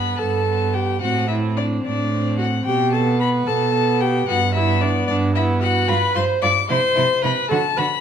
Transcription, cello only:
0.19 G2
1.03 A2
1.84 A2
2.66 B2
3.47 B2
4.28 G2
5.09 G2
5.89 G2
6.16 G2
6.43 G2
6.70 C3
6.98 C3
7.24 C3
7.51 D3
7.78 D3

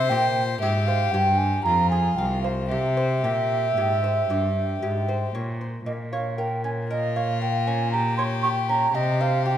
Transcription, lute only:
Already playing: C5
0.11 A#2 G4
0.62 G#2 G4
0.88 C5
1.14 G2 G4
1.66 F2
1.92 G#4
2.18 F5
2.44 C5
2.71 C3
2.97 C5
3.24 A#2 G4
3.77 G#2 G4
4.04 C5
4.30 G2 G4
4.82 G#2 G4
5.09 C5
5.35 A#2 C#5
5.61 C5
5.86 A#2
6.13 C#5
6.38 A#4
6.64 C#4
6.91 A#4
7.16 C#5
7.42 A#4
7.67 C#4
8.19 C#5
8.44 G4
8.69 C#4
8.95 C3
9.21 C5
9.46 G4

